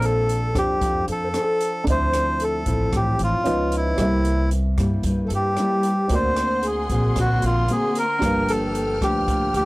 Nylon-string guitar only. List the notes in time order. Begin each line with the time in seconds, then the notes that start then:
Already playing: A#3 D4 A4 C5
0.54 D4 A4 C5
0.81 F3
1.34 D4 A4 C5
1.88 D3 F3 C4 E4
2.67 F3 C4 E4
2.93 A2
3.45 F3 B3 D#4
3.99 C3 G3 A#3 E4
4.78 G3 A#3 E4
5.05 G2
5.59 G3 A#3 E4
6.11 D3 A#3 C4 F#4
6.91 A#3 C4 F#4
7.17 D3
7.70 A#3 C4 F#4
8.22 G2 F3 A#3 D4
9.01 F3 A#3 D4
9.29 D3